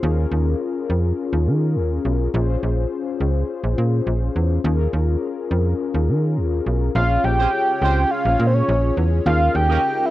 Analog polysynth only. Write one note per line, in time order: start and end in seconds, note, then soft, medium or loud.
0.00 2.30 C#4 medium
0.00 2.30 F4 medium
0.00 2.30 G#4 medium
0.00 0.16 C5 medium
0.00 0.16 F5 medium
0.04 2.30 A#4 medium
2.33 4.60 C#4 medium
2.33 4.60 F4 medium
2.33 4.61 G#4 medium
2.33 4.61 C5 medium
4.64 6.91 C#4 medium
4.64 6.91 F4 medium
4.64 6.91 G#4 medium
4.64 6.92 A#4 medium
6.95 7.01 C4 medium
6.95 9.22 F4 medium
6.95 9.22 G#4 medium
6.95 9.23 C#5 medium
7.01 9.24 C#4 medium
9.25 10.11 C#4 medium
9.25 10.11 F4 medium
9.25 10.11 G#4 medium
9.25 10.11 A#4 medium